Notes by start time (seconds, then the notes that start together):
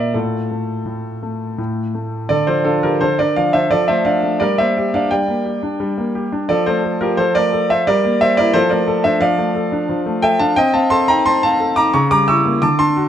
Already playing: A#2 A#3 A#4 D5 E5
0.14 A2 F4 A4
0.51 A3
0.86 A2
1.23 A3
1.58 A2
1.95 A3
2.29 D3 A4 D5
2.47 F3 A4 C5
2.65 D4 F4 A4
2.83 F3 G4 A#4
3.01 D3 A4 C5
3.19 D4 A#4 D5
3.36 F3 D5 F5
3.53 D4 C5 E5
3.71 F3 A4 D5
3.88 A3 C5 E5
4.05 D4 D5 F5
4.23 A3
4.40 G3 A#4 D5
4.58 A#3 C5 E5
4.77 G4
4.94 D4 D5 F5
5.11 G3 D5 G5
5.28 A#3
5.46 G4
5.63 D4
5.80 G3
5.98 A#3
6.15 G4
6.32 D4
6.49 F3 A4 D5
6.66 A3 A4 C5
6.84 A4
7.01 F4 G4 A#4
7.17 F3 A4 C5
7.35 A3 A#4 D5
7.53 A4
7.70 F4 C5 E5
7.87 G3 A#4 D5
8.05 A#3
8.21 G4 C5 E5
8.37 E4 A#4 D5
8.53 F3 A4 C5
8.70 A3 A#4 D5
8.88 A4
9.04 D4 C5 E5
9.21 F3 D5 F5
9.38 A3
9.55 A4
9.72 D4
9.89 F3
10.06 A3
10.22 A4 E5 G5
10.39 D4 F5 A5
10.56 C4 D#5 G5
10.74 C4 F5 A5
10.90 A4 A5 C6
11.08 D#4 G5 A#5
11.26 C4 A5 C6
11.43 C4 F5 A5
11.60 A4
11.76 D#4 A#5 D6
11.94 C#3 A#5 C#6
12.11 G3 A#5 D6
12.28 E4 C#6 E6
12.45 A#3
12.62 D3 A5 D6
12.79 D4 A5 C6
12.96 F#4